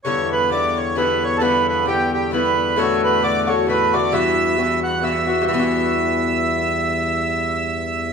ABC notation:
X:1
M:3/4
L:1/16
Q:"Swing" 1/4=133
K:Edor
V:1 name="Accordion"
c2 B2 d2 c2 B2 c3/2 A/2 | B2 B2 G2 G2 B4 | c2 B2 d2 c2 B2 d2 | e6 f2 e4 |
e12- | e12 |]
V:2 name="Bouzouki"
[G,,D,B,E]4 [G,,D,B,E]4 [G,,D,B,E]4 | [G,,D,B,E]4 [G,,D,B,E]4 [G,,D,B,E]4 | [A,,D,A,F]4 [A,,D,A,F]2 [D,A,F]2 [A,,D,A,F]2 [D,A,F]2 | [G,,E,B,F]4 [G,,E,B,F]4 [G,,E,B,F]2 [E,B,F]2 |
[G,,E,B,F]12- | [G,,E,B,F]12 |]
V:3 name="Harmonium" clef=bass
E,,12- | E,,12- | E,,12- | E,,12 |
E,,12- | E,,12 |]